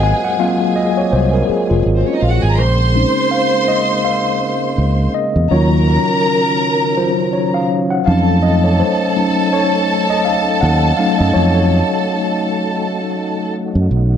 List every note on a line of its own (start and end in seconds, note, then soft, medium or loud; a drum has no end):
0.00 0.12 G#1 loud
0.00 2.55 F#3 medium
0.00 5.47 G#3 medium
0.00 2.55 C4 medium
0.00 1.81 G#4 loud
0.00 1.33 A#4 medium
0.00 0.97 C#5 medium
0.00 0.76 D#5 medium
0.00 0.40 F5 medium
0.00 0.24 F#5 loud
0.00 1.81 G#5 loud
0.00 0.25 G#5 medium
0.24 0.40 F#5 medium
0.39 2.54 F#3 medium
0.39 2.54 A#3 soft
0.39 2.55 C4 soft
0.39 1.69 F4 medium
0.39 0.77 F5 loud
0.76 0.98 D#5 medium
0.97 1.13 C#5 medium
1.12 1.41 C2 medium
1.12 1.22 C5 medium
1.33 1.49 A#4 medium
1.48 1.58 G#4 medium
1.48 muted fingered electric bass stroke soft
1.70 1.83 F1 medium
1.70 2.04 F4 medium
1.86 2.02 G#1 medium
1.95 2.06 C4 medium
1.95 2.06 C5 medium
2.06 2.14 C#4 medium
2.06 2.14 C#5 medium
2.14 2.22 D#4 medium
2.14 2.22 D#5 medium
2.21 2.39 A#1 medium
2.21 2.32 F4 medium
2.21 2.32 F5 medium
2.31 2.42 F#4 medium
2.31 2.42 F#5 medium
2.43 2.58 G#1 medium
2.43 2.51 G#4 medium
2.43 2.51 G#5 medium
2.51 2.59 A#4 medium
2.51 2.59 A#5 medium
2.58 3.04 A#1 medium
2.58 8.03 C#3 medium
2.58 5.48 A#3 medium
2.58 5.10 C5 loud
2.58 5.10 C6 loud
2.94 5.47 G#3 medium
2.94 5.47 C4 soft
2.94 5.47 C#4 soft
2.94 5.47 D#4 medium
3.31 3.69 F5 medium
3.68 4.06 D#5 medium
4.05 5.18 F5 medium
4.78 5.07 C#2 medium
5.14 5.52 D#5 medium
5.36 5.48 E2 medium
5.50 5.96 D#2 medium
5.50 8.04 D#3 medium
5.50 6.01 F#3 medium
5.50 8.04 F#3 medium
5.50 6.02 C#4 soft
5.50 10.95 C#4 medium
5.50 6.02 F4 medium
5.50 7.66 A#4 loud
5.50 5.68 C#5 medium
5.50 7.66 A#5 loud
5.89 6.05 A#4 medium
6.97 7.30 F#3 soft
6.97 7.30 C#4 soft
6.97 7.30 F4 soft
6.97 7.35 C5 medium
7.33 7.55 C#5 medium
7.54 7.92 F5 medium
7.90 8.07 F#5 medium
8.06 8.81 F2 loud
8.06 9.15 F#3 medium
8.06 9.15 A3 soft
8.06 14.17 A3 medium
8.06 9.15 C#4 medium
8.06 14.17 D#4 medium
8.06 9.15 D#4 medium
8.06 13.50 A4 loud
8.06 8.40 F5 medium
8.06 13.50 A5 loud
8.43 8.65 D#5 medium
8.64 8.80 C#5 medium
8.80 8.96 C5 medium
9.16 9.49 F#3 soft
9.16 9.49 A3 soft
9.16 9.49 C#4 soft
9.16 9.49 D#4 medium
9.53 10.12 C#5 medium
10.10 10.26 D#5 loud
10.25 10.63 F5 medium
10.61 10.91 D#2 loud
10.61 10.95 F#5 loud
10.97 13.86 F#3 medium
10.97 13.86 A3 medium
10.97 13.87 C#4 soft
10.97 13.87 D#4 medium
10.97 14.17 F#4 medium
10.97 11.20 F5 medium
11.18 11.32 F#2 medium
11.18 11.35 D#5 medium
11.34 11.81 F2 loud
11.34 11.54 C#5 medium
11.55 13.34 C#5 medium
13.75 13.87 F#2 medium
13.91 14.17 B1 medium